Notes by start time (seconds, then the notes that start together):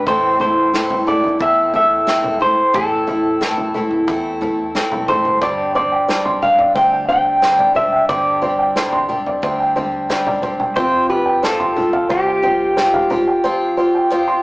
0.06 A1 A2 E3 A3 C4 E4 A4 C5, kick, floor tom
0.40 A3 C4 E4 A4 C5, floor tom
0.74 A2 E3 A3 C4 E4 A4, snare
0.90 floor tom
1.07 A3 C4 E4 A4 D5, mid tom
1.24 floor tom
1.39 E2 A3 C4 E4 A4 E5, kick
1.74 A3 C4 E4 A4 E5, floor tom
2.07 A2 E3 A3 C4 E4 A4, snare
2.24 floor tom, mid tom
2.40 A3 C4 E4 A4 C5, mid tom
2.74 A1 A2 E3 A3 C4 E4 A4, kick, floor tom
3.07 A3 C4 E4 A4, floor tom
3.41 A2 E3 A3 C4 E4 A4, snare
3.58 floor tom
3.74 A3 C4 E4 A4, mid tom
3.91 floor tom
4.07 E2 A3 C4 E4 A4, kick
4.41 A3 C4 E4 A4, floor tom
4.75 A2 E3 A3 C4 E4 A4, snare
4.92 B1, floor tom, mid tom
5.08 A1 A3 C4 E4 A4 C5, kick, mid tom
5.25 G1, mid tom
5.41 G1 G2 D3 G3 C4 D4 G4 C5 D5, kick, floor tom
5.75 G3 C4 D4 G4 C5 D5, floor tom
5.92 G5
6.08 G2 D3 G3 C4 D4 G4 C5, snare
6.25 C6, floor tom
6.42 G3 C4 D4 G4 F5, mid tom
6.59 D5, floor tom
6.75 D2 G3 C4 D4 G4 C5 G5, kick
6.92 G5
7.08 G3 C4 D4 G4 C5 G5, floor tom
7.42 G2 D3 G3 C4 D4 G4 C5, snare
7.58 D5, floor tom, mid tom
7.75 G3 C4 D4 G4 C5 E5, mid tom
7.92 G5
8.09 G1 G2 D3 G3 C4 D4 G4 C5 D5, kick, floor tom
8.42 G3 C4 D4 G4 C5, floor tom
8.59 G5
8.76 G2 D3 G3 C4 D4 G4 C5, snare
8.92 C6, floor tom
9.09 G3 C4 D4 G4, mid tom
9.26 D5, floor tom
9.42 D2 G3 C4 D4 G4 C5, kick
9.60 G5
9.76 G3 C4 D4 G4 C5, floor tom
10.09 G2 D3 G3 C4 D4 G4 C5, snare
10.26 D5, floor tom, mid tom
10.42 G3 C4 D4 G4 C5, kick, mid tom
10.60 G5, mid tom
10.76 F1 F3 C4 F4 G4 C5, kick, floor tom
11.09 C4 F4 G4 B4, floor tom
11.26 G5
11.43 F3 C4 F4 G4 A4 C5, snare
11.60 C6, floor tom
11.76 C4 F4 G4, mid tom
11.93 F5, floor tom
12.09 C2 F3 C4 F4 G4 C5, kick
12.27 G5
12.42 C4 F4 G4 C5, floor tom
12.77 F3 C4 F4 G4 C5, snare
12.94 F5, floor tom, mid tom
13.10 C4 F4 G4 C5, mid tom
13.28 G5
13.44 F3 C4 F4 G4 C5
13.77 C4 F4 G4 C5
13.95 G5
14.10 F3 C4 F4 G4 C5
14.19 F4
14.28 C6